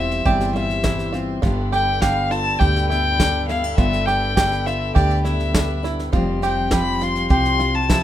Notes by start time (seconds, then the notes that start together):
Already playing: E1 E2 E3 G3 C4 E4 F4 G4 C5 E5 C6
0.11 snare
0.25 G1 E2 E4 G4 D5, kick, snare
0.40 snare
0.53 G3 F4 E5, snare
0.70 snare
0.82 E3 E4, kick, snare
0.99 snare
1.13 C4 F4, snare
1.42 G1 G2 D3 B3 D4 F4 G4 A4 D5 G5 B5, kick, snare
1.72 D4 G4 G5, snare
2.01 D3 B3 G4 F5, kick, snare
2.31 F4 A5, snare
2.59 D2 G2 G4 G5, kick, snare
2.76 snare
2.89 B3 E4 G5, snare
3.20 D3 D4, kick, snare
3.48 B3 E4 F5, snare
3.64 D4
3.77 G1 G2 B3 F4 E5, kick, snare
3.93 snare
4.05 D4 G4 G5, snare
4.37 D3 B3 G4, kick, snare
4.51 snare
4.66 F4 E5, snare
4.95 D2 G2 G4 D5, kick, snare
5.11 snare
5.25 B3 E4 E5, snare
5.40 snare
5.52 D3 D4, kick, snare
5.83 D4 E4, snare
5.99 snare
6.12 F1 F2 F3 G3 C4 F4 G4 C5 F5 C6, kick, snare
6.42 C4 G4 G5, snare
6.71 F3 G3 G4 B5, kick, snare
7.01 F4 C6, snare
7.15 snare
7.29 C2 C3 G4 C6, kick, snare
7.45 snare
7.60 G3 F4, snare
7.74 A5
7.89 F3 E4, kick, snare